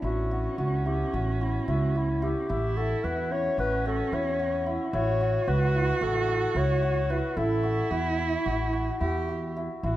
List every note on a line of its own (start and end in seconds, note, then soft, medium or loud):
0.00 0.46 A1 medium
0.00 2.52 B3 medium
0.00 2.51 C#4 medium
0.00 3.22 D4 medium
0.00 0.85 E4 medium
0.04 0.55 F#4 medium
0.31 0.58 F#4 medium
0.58 1.02 C#2 medium
0.58 1.13 F#4 medium
0.58 0.88 F#4 medium
0.86 1.68 E4 medium
0.86 1.16 G4 medium
1.13 1.57 A1 medium
1.13 1.41 F#4 medium
1.13 1.44 F#4 medium
1.41 1.71 E4 medium
1.41 1.95 F#4 medium
1.68 2.33 C#2 medium
1.68 2.22 E4 medium
1.68 1.98 F#4 medium
1.95 2.24 E4 medium
1.95 2.77 F#4 medium
2.22 2.49 E4 medium
2.22 2.79 G4 medium
2.49 2.93 A1 medium
2.49 3.32 E4 medium
2.49 3.31 E4 medium
2.77 3.04 F#4 medium
2.77 3.05 A4 medium
3.04 3.47 E2 medium
3.04 3.58 F#4 medium
3.04 3.33 B4 medium
3.30 4.93 C#4 medium
3.30 4.12 E4 medium
3.30 3.59 C#5 loud
3.58 4.01 A1 medium
3.58 3.85 F#4 medium
3.58 3.84 B4 loud
3.86 4.39 F#4 medium
3.86 4.16 A4 medium
4.12 4.76 E2 medium
4.12 4.66 E4 medium
4.12 4.74 C#5 loud
4.39 5.20 F#4 medium
4.66 4.93 E4 medium
4.93 5.36 A1 loud
4.93 5.74 E4 medium
4.93 7.39 F#4 loud
4.93 5.50 C#5 loud
5.21 5.47 F#4 medium
5.47 5.90 C#2 medium
5.47 6.01 F#4 medium
5.47 6.05 B4 loud
5.74 6.55 E4 medium
6.01 6.44 A1 medium
6.01 6.28 F#4 medium
6.01 6.59 A4 medium
6.28 6.82 F#4 medium
6.55 7.19 C#2 medium
6.55 7.09 E4 medium
6.55 7.12 C#5 loud
6.82 7.63 F#4 medium
7.10 7.36 E4 medium
7.10 7.38 B4 medium
7.37 7.80 A1 medium
7.37 8.18 E4 medium
7.37 9.00 E4 loud
7.37 7.93 A4 loud
7.63 7.90 F#4 medium
7.91 8.34 E2 medium
7.91 9.56 E4 medium
7.91 8.45 F#4 medium
8.18 9.00 E4 medium
8.46 8.89 A1 medium
8.46 8.73 F#4 medium
8.73 9.28 F#4 medium
9.01 9.66 E2 medium
9.01 9.56 E4 medium
9.01 9.52 G4 medium
9.29 9.97 F#4 medium
9.57 9.83 E4 medium
9.83 9.97 A1 medium
9.83 9.97 E4 medium
9.83 9.97 F#4 loud